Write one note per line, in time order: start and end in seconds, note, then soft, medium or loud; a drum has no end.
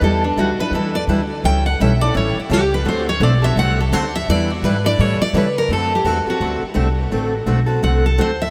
0.01 0.36 E2 medium
0.01 0.23 E3 medium
0.01 0.23 G3 medium
0.01 0.23 D4 medium
0.01 0.23 E4 medium
0.01 0.24 A4 medium
0.01 0.24 B4 medium
0.24 0.37 D4 soft
0.37 0.57 D2 medium
0.37 0.49 E3 medium
0.37 0.49 G3 medium
0.37 0.49 D4 medium
0.37 0.49 E4 medium
0.37 0.59 F#4 medium
0.37 0.49 B4 medium
0.58 0.73 D4 soft
0.58 0.73 E4 medium
0.58 0.73 B4 medium
0.58 0.73 B4 loud
0.58 muted upright bass stroke soft
0.71 1.06 E2 medium
0.71 0.94 E3 medium
0.71 0.95 G3 medium
0.71 0.95 D4 medium
0.71 0.95 E4 medium
0.71 0.95 B4 medium
0.75 0.95 A4 medium
0.95 1.03 D5 medium
1.07 1.42 D2 medium
1.07 1.20 E3 medium
1.07 1.20 G3 medium
1.07 1.20 D4 medium
1.07 1.20 E4 loud
1.07 1.20 B4 loud
1.44 1.78 C#2 medium
1.44 1.65 E3 medium
1.44 1.65 G3 medium
1.44 1.65 C#4 medium
1.44 1.66 E4 medium
1.44 1.66 A4 medium
1.44 1.66 G5 loud
1.66 1.79 F#5 medium
1.80 2.14 B1 medium
1.80 1.91 E3 medium
1.80 1.91 G3 medium
1.80 1.92 C#4 medium
1.80 1.92 E4 medium
1.80 1.92 A4 loud
1.80 2.02 E5 medium
2.01 2.13 C#4 medium
2.01 2.14 E4 medium
2.01 2.14 A4 medium
2.01 2.15 D5 loud
2.14 2.35 A1 medium
2.14 2.36 E3 medium
2.14 2.36 G3 medium
2.14 2.36 C#4 medium
2.14 2.36 E4 medium
2.14 2.36 A4 medium
2.14 2.37 C#5 medium
2.36 2.52 E4 soft
2.36 muted upright bass stroke soft
2.50 2.84 C#2 loud
2.50 2.61 E3 medium
2.50 2.62 G3 medium
2.50 2.62 C#4 medium
2.50 2.62 E4 loud
2.50 2.73 G4 medium
2.50 2.62 A4 medium
2.74 2.87 B4 medium
2.85 3.20 D2 medium
2.85 3.07 D3 medium
2.85 3.07 A3 medium
2.85 3.07 C4 medium
2.85 3.07 F#4 medium
2.85 3.07 A4 medium
2.85 3.08 C5 medium
3.09 3.22 C#5 medium
3.20 3.55 B1 medium
3.20 3.32 D3 medium
3.20 3.32 A3 medium
3.20 3.32 C4 medium
3.20 3.33 F#4 medium
3.20 3.33 A4 medium
3.20 3.44 D5 medium
3.42 3.56 C4 medium
3.42 3.56 F#4 medium
3.42 3.56 A4 medium
3.42 3.57 E5 loud
3.56 3.91 C2 loud
3.56 3.78 D3 medium
3.56 3.78 A3 medium
3.56 3.78 C4 medium
3.56 3.78 F#4 medium
3.56 3.78 A4 medium
3.56 3.79 F#5 loud
3.81 3.93 A4 medium
3.92 4.27 D2 loud
3.92 4.04 D3 loud
3.92 4.04 A3 medium
3.92 4.04 C4 medium
3.92 4.04 F#4 loud
3.92 4.04 A4 medium
3.92 4.14 C5 medium
4.15 4.28 E5 loud
4.28 4.62 E2 medium
4.28 4.50 E3 medium
4.28 4.50 G3 medium
4.28 4.50 D4 medium
4.28 4.50 E4 medium
4.28 4.50 B4 medium
4.28 4.50 D5 medium
4.50 4.64 F#4 soft
4.62 4.97 G#2 medium
4.62 4.75 E3 medium
4.62 4.75 G3 medium
4.62 4.75 D4 medium
4.62 4.75 E4 medium
4.62 4.85 B4 medium
4.62 4.76 B4 loud
4.84 4.99 D4 medium
4.84 4.99 E4 medium
4.84 4.98 B4 medium
4.84 5.00 D5 loud
4.99 5.19 A2 medium
4.99 5.20 E3 medium
4.99 5.20 G3 medium
4.99 5.20 C#4 medium
4.99 5.21 E4 medium
4.99 5.21 A4 medium
4.99 5.21 C#5 medium
5.20 5.35 D5 loud
5.20 muted upright bass stroke soft
5.33 5.68 C#3 loud
5.33 5.46 E3 loud
5.33 5.46 G3 medium
5.33 5.46 C#4 medium
5.33 5.46 E4 medium
5.33 5.46 A4 loud
5.33 5.57 B4 medium
5.58 5.71 A#4 medium
5.69 6.04 F#2 medium
5.69 5.91 D3 medium
5.69 5.91 A3 medium
5.69 5.91 C4 medium
5.69 5.91 F#4 medium
5.69 5.92 A4 medium
5.73 5.93 A4 medium
5.95 6.07 G4 medium
6.04 6.25 E2 medium
6.04 6.16 D3 medium
6.04 6.16 A3 medium
6.04 6.17 C4 medium
6.04 6.17 F#4 medium
6.04 6.27 F#4 medium
6.04 6.17 A4 medium
6.26 6.40 C4 soft
6.26 6.40 F#4 medium
6.26 6.62 F#4 medium
6.26 6.40 A4 medium
6.26 muted upright bass stroke soft
6.40 6.61 D2 medium
6.40 6.62 D3 medium
6.40 6.62 A3 medium
6.40 6.62 C4 medium
6.40 6.62 F#4 medium
6.40 6.62 A4 medium
6.62 muted upright bass stroke soft
6.74 7.10 C2 medium
6.74 6.87 D3 medium
6.74 6.86 A3 medium
6.74 6.87 C4 medium
6.74 6.87 F#4 medium
6.74 6.87 A4 medium
7.11 7.46 A1 medium
7.11 7.33 D3 medium
7.11 7.33 A3 medium
7.11 7.33 C4 medium
7.11 7.33 F#4 medium
7.11 7.33 A4 medium
7.46 7.81 B1 medium
7.46 7.58 D3 medium
7.46 7.58 A3 medium
7.46 7.58 C4 medium
7.46 7.59 F#4 medium
7.46 7.59 A4 medium
7.66 7.82 C4 soft
7.66 7.82 F#4 medium
7.66 7.81 A4 medium
7.83 8.18 C2 medium
7.83 8.04 D3 medium
7.83 8.04 A3 medium
7.83 8.04 C4 medium
7.83 8.04 F#4 medium
7.83 8.04 A4 medium
7.83 8.04 F#5 medium
8.06 8.19 A4 medium
8.18 8.50 D2 medium
8.18 8.29 D3 medium
8.18 8.29 A3 medium
8.18 8.30 C4 medium
8.18 8.30 F#4 loud
8.18 8.30 A4 medium
8.18 8.41 C5 medium
8.42 8.50 E5 medium